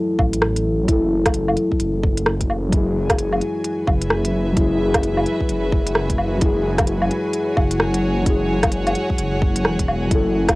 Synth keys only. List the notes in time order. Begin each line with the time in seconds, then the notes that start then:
Already playing: F#3 E4 A4
0.84 F#3 E4
0.92 A4
2.69 F#3
2.73 E4 G#4
4.53 F#3
4.57 E4 G#4
6.37 F#3
6.41 E4 G#4
8.22 F#3
8.26 E4
8.30 G#4
10.07 F#3
10.11 E4 A4